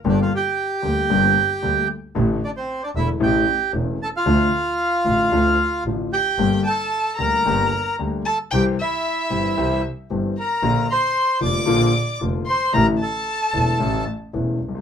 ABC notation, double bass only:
X:1
M:4/4
L:1/8
Q:1/4=114
K:Gdor
V:1 name="Double bass" clef=bass
G,,, z2 D,, G,,, z D,, z | A,,, z2 E,,, A,,, z E,,, z | D,, z2 A,,, D,, z A,,, z | G,,, z2 D,, G,,, z D,, z |
C,, z2 G,,, C,, z G,,, z | B,,, z2 F,,, B,,, z F,,, z | A,,, z2 E,,, A,,, z E,,, C,, |]